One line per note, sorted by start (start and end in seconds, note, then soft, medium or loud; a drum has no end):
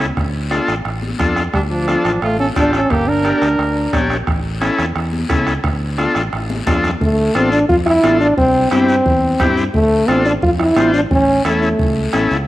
0.00 0.10 C#2 medium
0.00 bombo rim medium
0.00 short guiro medium
0.17 0.58 D2 loud
0.17 bombo low medium
0.17 bombo rim medium
0.17 long guiro medium
0.50 0.75 D4 medium
0.50 0.75 F4 medium
0.50 0.75 A4 medium
0.50 bombo rim medium
0.50 high conga medium
0.50 short guiro medium
0.68 0.82 A1 medium
0.68 bombo rim medium
0.68 short guiro medium
0.85 1.13 A1 medium
0.85 bombo rim medium
0.85 long guiro medium
1.02 high conga medium
1.19 1.47 F2 medium
1.19 1.43 D4 medium
1.19 1.43 F4 medium
1.19 1.44 A4 medium
1.19 bombo low medium
1.19 bombo rim medium
1.19 high conga medium
1.19 short guiro medium
1.36 bombo rim medium
1.36 short guiro medium
1.53 1.95 D2 loud
1.53 1.61 G3 medium
1.53 1.62 D4 medium
1.53 bombo low medium
1.53 bombo rim medium
1.53 long guiro medium
1.70 2.18 F3 medium
1.70 2.19 D4 medium
1.87 2.12 D4 medium
1.87 2.12 F4 medium
1.87 2.12 A4 medium
1.87 bombo rim medium
1.87 high conga medium
1.87 short guiro medium
2.05 2.19 A1 medium
2.05 bombo rim medium
2.05 short guiro medium
2.22 2.49 A1 medium
2.22 2.38 A3 medium
2.22 2.39 F4 medium
2.22 bombo rim medium
2.22 long guiro medium
2.39 2.47 C#4 medium
2.39 2.47 A4 medium
2.39 high conga medium
2.56 2.84 A1 medium
2.56 2.80 D4 medium
2.56 2.73 D4 loud
2.56 2.80 F4 medium
2.56 2.80 G4 medium
2.56 2.72 A4 medium
2.56 bombo low medium
2.56 bombo rim medium
2.56 high conga medium
2.56 short guiro medium
2.73 2.92 C#4 medium
2.73 2.92 A4 medium
2.73 bombo rim medium
2.73 short guiro medium
2.90 3.32 G1 loud
2.90 3.09 A#3 medium
2.90 3.10 G4 medium
2.90 bombo low medium
2.90 bombo rim medium
2.90 long guiro medium
3.08 4.10 D4 medium
3.08 4.11 A#4 medium
3.24 3.48 D4 medium
3.24 3.49 G4 medium
3.24 3.49 A#4 medium
3.24 bombo rim medium
3.24 high conga medium
3.24 short guiro medium
3.42 3.56 D2 medium
3.42 bombo rim medium
3.42 short guiro medium
3.59 3.86 D2 medium
3.59 bombo rim medium
3.59 long guiro medium
3.93 4.20 A#1 medium
3.93 4.17 D4 medium
3.93 4.17 G4 medium
3.93 4.17 C#5 medium
3.93 bombo low medium
3.93 bombo rim medium
3.93 high conga medium
3.93 short guiro medium
4.10 bombo rim medium
4.10 short guiro medium
4.27 4.68 A1 loud
4.27 bombo low medium
4.27 bombo rim medium
4.27 long guiro medium
4.61 4.85 C#4 medium
4.61 4.85 E4 medium
4.61 4.86 A4 medium
4.61 bombo rim medium
4.61 high conga medium
4.61 short guiro medium
4.78 4.92 E2 medium
4.78 bombo rim medium
4.78 short guiro medium
4.96 5.23 E2 medium
4.96 bombo rim medium
4.96 long guiro medium
5.13 high conga medium
5.29 5.57 C#2 medium
5.29 5.54 C#4 medium
5.29 5.54 E4 medium
5.29 5.54 A4 medium
5.29 bombo low medium
5.29 bombo rim medium
5.29 high conga medium
5.29 short guiro medium
5.47 bombo rim medium
5.47 short guiro medium
5.64 6.05 D2 loud
5.64 bombo low medium
5.64 bombo rim medium
5.64 long guiro medium
5.98 6.22 D4 medium
5.98 6.22 F4 medium
5.98 6.23 A4 medium
5.98 bombo rim medium
5.98 high conga medium
5.98 short guiro medium
6.15 6.29 A1 medium
6.15 bombo rim medium
6.15 short guiro medium
6.33 6.60 A1 medium
6.33 bombo rim medium
6.33 long guiro medium
6.50 high conga medium
6.66 6.94 F2 medium
6.66 6.91 D4 medium
6.66 6.91 F4 medium
6.66 6.91 A4 medium
6.66 bombo low medium
6.66 bombo rim medium
6.66 high conga loud
6.66 short guiro medium
6.84 bombo rim medium
6.84 low conga medium
6.84 short guiro medium
7.01 7.28 D2 loud
7.01 7.37 A3 medium
7.01 bombo low medium
7.01 high conga soft
7.01 long guiro medium
7.35 7.63 A1 medium
7.35 7.51 C4 medium
7.35 7.59 D4 medium
7.35 7.59 F4 medium
7.35 7.59 A4 medium
7.35 bombo rim medium
7.35 high conga medium
7.35 short guiro medium
7.52 7.68 D4 medium
7.52 short guiro medium
7.69 7.97 F2 medium
7.69 7.77 F4 loud
7.69 bombo low medium
7.69 high conga soft
7.69 low conga medium
7.69 long guiro medium
7.86 8.18 E4 loud
7.86 bombo rim medium
8.03 8.31 A1 medium
8.03 8.27 D4 medium
8.03 8.27 F4 medium
8.03 8.28 A4 medium
8.03 bombo rim medium
8.03 high conga loud
8.03 short guiro medium
8.20 8.36 D4 loud
8.20 short guiro medium
8.37 8.65 C2 loud
8.37 8.69 C4 loud
8.37 bombo low medium
8.37 high conga soft
8.37 low conga medium
8.37 long guiro medium
8.71 8.99 G2 medium
8.71 8.95 C4 medium
8.71 9.53 C4 loud
8.71 8.96 E4 medium
8.71 8.96 G4 medium
8.71 bombo rim medium
8.71 high conga medium
8.71 short guiro medium
8.89 short guiro medium
9.06 9.33 E2 loud
9.06 bombo low medium
9.06 high conga soft
9.06 low conga medium
9.06 long guiro medium
9.40 9.67 G2 medium
9.40 9.64 C4 medium
9.40 9.64 E4 medium
9.40 9.64 G4 medium
9.40 bombo low medium
9.40 bombo rim medium
9.40 high conga medium
9.40 low conga medium
9.40 short guiro medium
9.57 short guiro medium
9.74 10.02 D2 loud
9.74 10.10 A3 loud
9.74 bombo low medium
9.74 high conga soft
9.74 long guiro medium
10.08 10.36 A1 medium
10.08 10.26 C4 loud
10.08 10.32 D4 medium
10.08 10.32 F4 medium
10.08 10.33 A4 medium
10.08 bombo rim medium
10.08 high conga medium
10.08 short guiro medium
10.25 10.34 D4 medium
10.25 short guiro medium
10.42 10.70 F2 loud
10.42 10.51 F4 loud
10.42 bombo low medium
10.42 high conga soft
10.42 low conga medium
10.42 long guiro medium
10.60 10.92 E4 loud
10.60 bombo rim medium
10.76 11.04 A1 medium
10.76 11.01 D4 medium
10.76 11.01 F4 medium
10.76 11.01 C5 medium
10.76 bombo rim medium
10.76 high conga medium
10.76 low conga medium
10.76 short guiro medium
10.94 11.02 D4 medium
10.94 short guiro medium
11.11 11.38 A1 loud
11.11 11.43 C#4 loud
11.11 bombo low medium
11.11 high conga soft
11.11 low conga medium
11.11 long guiro medium
11.45 11.72 E2 medium
11.45 12.27 A3 medium
11.45 11.69 C#4 medium
11.45 11.69 E4 medium
11.45 11.69 A4 medium
11.45 bombo rim medium
11.45 high conga medium
11.45 short guiro medium
11.62 short guiro medium
11.79 12.06 C#2 medium
11.79 bombo low medium
11.79 high conga soft
11.79 low conga medium
11.79 long guiro medium
12.13 12.29 A1 medium
12.13 12.37 C#4 medium
12.13 12.37 E4 medium
12.13 12.37 A4 medium
12.13 bombo rim medium
12.13 high conga medium
12.13 short guiro medium
12.31 12.46 C#2 medium
12.31 short guiro medium